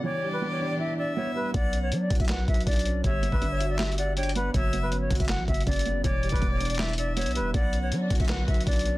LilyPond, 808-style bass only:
\new Staff \with { instrumentName = "808-style bass" } { \clef bass \time 4/4 \key b \minor \tempo 4 = 160 r1 | b,,4 fis8 b,,16 b,,8. b,,8 b,,4 | g,,8. g,,16 g,,2. | fis,,4 g,,8 fis,,16 fis,,8 ais,,16 fis,,8 fis,,4 |
e,,8. e,,16 e,,2~ e,,16 b,,16. e,,16. | b,,4 fis8 b,,16 b,,8. b,,8 b,,4 | }